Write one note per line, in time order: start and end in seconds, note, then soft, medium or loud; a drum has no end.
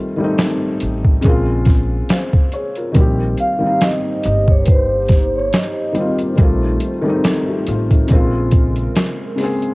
0.00 0.16 D#3 medium
0.00 0.18 G3 medium
0.00 0.20 A3 medium
0.00 0.22 C4 medium
0.00 1.26 F4 medium
0.16 1.23 D#3 medium
0.16 1.24 G3 medium
0.16 1.24 A3 medium
0.22 1.26 C4 medium
0.22 1.26 D#4 loud
0.38 snare loud
0.38 closed hi-hat medium
0.80 1.19 A1 medium
0.80 closed hi-hat medium
1.05 kick medium
1.21 2.30 C#3 loud
1.21 2.31 G#3 medium
1.21 kick medium
1.21 closed hi-hat medium
1.25 2.00 A#1 loud
1.25 2.32 A#3 medium
1.25 2.33 C4 medium
1.25 2.12 F4 loud
1.65 kick medium
1.65 snare soft
1.65 closed hi-hat medium
2.09 2.51 C5 medium
2.09 2.51 F5 medium
2.09 snare loud
2.09 closed hi-hat medium
2.33 kick medium
2.52 2.76 G#4 medium
2.52 2.75 C#5 medium
2.52 closed hi-hat medium
2.75 3.18 F4 soft
2.75 3.17 A#4 medium
2.75 closed hi-hat soft
2.92 3.47 D#3 medium
2.92 3.48 G3 medium
2.92 6.35 A#3 medium
2.92 8.06 D#4 medium
2.92 6.35 G4 medium
2.92 8.06 C5 medium
2.92 kick loud
2.92 closed hi-hat medium
2.96 3.33 A#1 loud
2.96 3.49 A#3 medium
2.96 3.50 C4 medium
3.00 3.51 G4 medium
3.37 3.83 F5 loud
3.37 closed hi-hat medium
3.59 4.99 D#3 medium
3.59 5.00 G3 medium
3.63 5.01 A#3 medium
3.63 5.02 C4 medium
3.63 5.03 D#4 medium
3.81 4.50 D#5 loud
3.81 snare loud
3.81 closed hi-hat medium
4.23 5.49 G1 loud
4.23 closed hi-hat medium
4.48 4.62 C#5 medium
4.48 kick medium
4.63 4.68 B4 medium
4.63 closed hi-hat medium
4.68 5.37 C5 medium
4.68 kick medium
5.08 kick medium
5.08 snare soft
5.08 closed hi-hat medium
5.36 5.54 C#5 medium
5.53 6.17 D#5 medium
5.53 snare loud
5.53 closed hi-hat medium
5.93 6.30 D#3 medium
5.93 6.31 G3 medium
5.93 6.32 A#3 medium
5.93 closed hi-hat medium
5.99 6.33 C4 medium
5.99 6.34 F4 medium
6.19 closed hi-hat soft
6.35 6.76 A#1 loud
6.35 6.90 D#3 medium
6.35 6.91 G3 medium
6.35 8.08 A3 medium
6.35 6.92 A3 medium
6.35 9.74 F4 medium
6.35 kick loud
6.35 closed hi-hat medium
6.41 6.93 C4 medium
6.41 6.94 F4 medium
6.80 closed hi-hat medium
7.02 8.08 D#3 loud
7.02 8.09 G3 medium
7.02 7.24 A3 medium
7.08 7.25 C4 medium
7.08 7.24 D#4 loud
7.24 7.47 D#4 medium
7.24 7.47 A4 medium
7.24 snare loud
7.24 closed hi-hat medium
7.49 7.67 C4 soft
7.49 7.67 G4 medium
7.67 8.05 A1 medium
7.67 7.90 C4 medium
7.67 7.90 F4 medium
7.67 closed hi-hat medium
7.91 8.32 A3 soft
7.91 8.32 D#4 medium
7.91 kick medium
7.91 closed hi-hat soft
8.07 9.15 C#3 medium
8.07 9.74 C#3 medium
8.07 9.16 G#3 medium
8.07 9.74 G#3 medium
8.07 9.17 A#3 medium
8.07 9.74 A#4 medium
8.07 kick loud
8.07 closed hi-hat medium
8.11 8.86 A#1 loud
8.11 9.18 C4 medium
8.11 9.19 F4 loud
8.51 kick medium
8.51 closed hi-hat medium
8.76 closed hi-hat soft
8.95 snare loud
8.95 closed hi-hat medium
9.35 9.73 C#3 medium
9.35 9.74 G#3 medium
9.35 9.74 A#3 medium
9.35 open hi-hat soft
9.41 9.74 C4 medium
9.41 9.74 G#4 loud
9.62 closed hi-hat soft